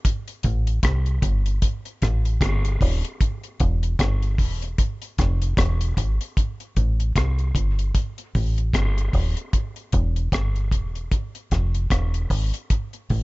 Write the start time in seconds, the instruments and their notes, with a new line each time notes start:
0.05 kick, closed hi-hat
0.28 closed hi-hat
0.43 fingered electric bass A1, kick, closed hi-hat
0.67 closed hi-hat
0.83 fingered electric bass C2, kick, cross-stick, closed hi-hat
1.06 closed hi-hat
1.22 fingered electric bass G1, kick, closed hi-hat
1.46 closed hi-hat
1.62 kick, closed hi-hat
1.85 closed hi-hat
2.02 fingered electric bass A1, kick, cross-stick, closed hi-hat
2.25 closed hi-hat
2.41 fingered electric bass G1, kick, cross-stick, closed hi-hat
2.65 closed hi-hat
2.81 fingered electric bass D#1, kick, open hi-hat
3.04 closed hi-hat
3.21 kick, closed hi-hat
3.44 closed hi-hat
3.60 fingered electric bass E1, kick, closed hi-hat
3.83 closed hi-hat
3.99 fingered electric bass G1, kick, cross-stick, closed hi-hat
4.22 closed hi-hat
4.38 fingered electric bass E1, kick, open hi-hat
4.62 closed hi-hat
4.78 kick, closed hi-hat
5.02 closed hi-hat
5.18 fingered electric bass F1, kick, cross-stick, closed hi-hat
5.42 closed hi-hat
5.57 fingered electric bass E1, kick, cross-stick, closed hi-hat
5.81 closed hi-hat
5.97 fingered electric bass G#1, kick, closed hi-hat
6.21 closed hi-hat
6.37 kick, closed hi-hat
6.60 closed hi-hat
6.76 fingered electric bass A1, kick, closed hi-hat
7.00 closed hi-hat
7.16 fingered electric bass C2, kick, cross-stick, closed hi-hat
7.39 closed hi-hat
7.55 fingered electric bass G1, kick, closed hi-hat
7.79 closed hi-hat
7.95 kick, closed hi-hat
8.18 closed hi-hat
8.35 fingered electric bass A1, kick, open hi-hat
8.58 closed hi-hat
8.73 fingered electric bass G1, kick, cross-stick, closed hi-hat
8.98 closed hi-hat
9.13 fingered electric bass D#1, kick, open hi-hat
9.37 closed hi-hat
9.53 kick, closed hi-hat
9.76 closed hi-hat
9.92 fingered electric bass E1, kick, closed hi-hat
10.16 closed hi-hat
10.32 fingered electric bass G1, kick, cross-stick, closed hi-hat
10.56 closed hi-hat
10.71 fingered electric bass E1, kick, closed hi-hat
10.95 closed hi-hat
11.12 kick, closed hi-hat
11.35 closed hi-hat
11.51 fingered electric bass F1, kick, cross-stick, closed hi-hat
11.74 closed hi-hat
11.90 fingered electric bass E1, kick, cross-stick, closed hi-hat
12.14 closed hi-hat
12.30 fingered electric bass G#1, kick, open hi-hat
12.54 closed hi-hat
12.70 kick, closed hi-hat
12.93 closed hi-hat
13.10 fingered electric bass A1, kick, open hi-hat